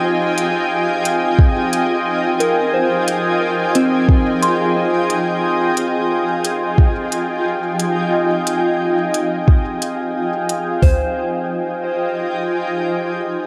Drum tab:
HH |-x-x-x-x|-x-x-x-x|-x-x-x-x|-x-x-x-x|
FT |--------|--------|--------|--------|
BD |----o---|----o---|----o---|----o---|

HH |o-------|
FT |o-------|
BD |o-------|